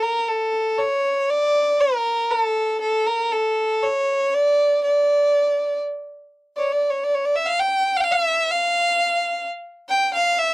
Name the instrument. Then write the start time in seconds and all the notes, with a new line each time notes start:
violin
0.03 A#4
0.28 A4
0.78 C#5
1.30 D5
1.80 A#4
2.30 A4
2.81 A4
3.06 A#4
3.32 A4
3.83 C#5
4.34 D5
4.84 D5
6.56 C#5 D5
6.72 D5
6.90 C#5
7.03 D5
7.14 C#5
7.25 D5
7.36 E5
7.46 F5
7.59 G5
7.96 F5 G5
8.04 F5
8.11 E5
8.51 F5
9.89 G5
10.14 F5
10.39 E5